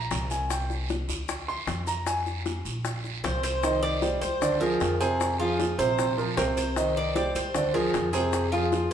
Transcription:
Already playing: grand piano A#5
0.11 upright bass C2, high bongo, low bongo, short guiro, maracas
0.30 grand piano G#5, high bongo, short guiro, maracas
0.50 grand piano G5, high bongo, long guiro, maracas
0.70 high bongo, maracas
0.89 high bongo, short guiro, maracas
1.08 upright bass D2, high bongo, short guiro, maracas
1.29 high bongo, long guiro, maracas
1.48 grand piano C6, maracas
1.67 upright bass F2, high bongo, low bongo, short guiro, maracas
1.87 grand piano A#5, high bongo, short guiro, maracas
2.06 grand piano G#5, high bongo, long guiro, maracas
2.26 high bongo, maracas
2.46 high bongo, short guiro, maracas
2.65 upright bass A#1, short guiro, maracas
2.85 high bongo, long guiro, maracas
3.04 high bongo, maracas
3.24 upright bass C2, cuban tres C5, high bongo, low bongo, short guiro, maracas
3.43 cuban tres C5, high bongo, short guiro, maracas
3.63 grand piano D#3 D#4 D#5, high bongo, long guiro, maracas
3.83 cuban tres D5, high bongo, maracas
4.02 grand piano G3 G4 C5, high bongo, short guiro, maracas
4.21 upright bass D2, cuban tres C5, high bongo, short guiro, maracas
4.41 grand piano D3 D4 D5, high bongo, long guiro, maracas
4.61 grand piano F3 F4 G#4, cuban tres A#4, maracas
4.80 upright bass F2, high bongo, low bongo, short guiro, maracas
5.00 grand piano C3 C4 C5, cuban tres G#4, high bongo, short guiro, maracas
5.20 high bongo, long guiro, maracas
5.39 grand piano F3 F4 G#4, cuban tres F4, high bongo, maracas
5.60 high bongo, short guiro, maracas
5.78 upright bass A#1, grand piano C3 C4 C5, cuban tres C5, short guiro, maracas
5.99 high bongo, long guiro, maracas
6.17 grand piano F3 F4 A#4, high bongo, maracas
6.37 upright bass C2, grand piano C3 C4 C5, cuban tres A#4, high bongo, low bongo, short guiro, maracas
6.57 cuban tres C5, high bongo, short guiro, maracas
6.76 grand piano D#3 D#4 D#5, high bongo, long guiro, maracas
6.96 cuban tres D5, high bongo, maracas
7.15 grand piano G3 G4 C5, cuban tres D5, high bongo, short guiro, maracas
7.35 upright bass D2, cuban tres C5, high bongo, short guiro, maracas
7.54 grand piano D3 D4 D5, high bongo, long guiro, maracas
7.74 grand piano F3 F4 G#4, cuban tres A#4, maracas
7.94 upright bass F2, high bongo, low bongo, short guiro, maracas
8.13 grand piano C3 C4 C5, cuban tres G#4, high bongo, short guiro, maracas
8.33 high bongo, long guiro, maracas
8.52 grand piano F3 F4 G#4, cuban tres F4, high bongo, maracas
8.72 high bongo, short guiro, maracas

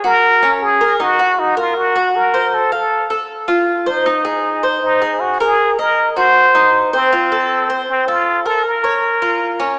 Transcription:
0.04 cuban tres F#4, muted trumpet A#4
0.42 cuban tres C#4
0.63 muted trumpet G#4
0.81 cuban tres A#4
1.00 cuban tres D#4, muted trumpet F#4
1.19 cuban tres F#4
1.39 muted trumpet D#4
1.57 muted trumpet F4, cuban tres A#4
1.77 muted trumpet F#4
1.96 cuban tres F#4
2.16 muted trumpet A#4
2.34 cuban tres C5
2.54 muted trumpet A4
2.72 muted trumpet A4, cuban tres F5
3.10 cuban tres A4
3.48 cuban tres F4
3.86 muted trumpet D#4, cuban tres C5
4.06 cuban tres D#4
4.25 cuban tres G#4
4.63 cuban tres C5
4.82 muted trumpet D#4
5.02 cuban tres G#4
5.20 muted trumpet F#4
5.40 muted trumpet G#4, cuban tres A#4
5.79 muted trumpet A#4, cuban tres D#5
6.16 cuban tres F#4, muted trumpet C5
6.55 cuban tres D#4
6.93 muted trumpet C4, cuban tres C5
7.12 cuban tres F4
7.32 cuban tres A4
7.70 cuban tres C5
7.89 muted trumpet C4
8.08 muted trumpet F4, cuban tres A4
8.46 muted trumpet A4, cuban tres A#4
8.66 muted trumpet A#4
8.84 cuban tres C#5
9.22 cuban tres F4
9.60 cuban tres C#4

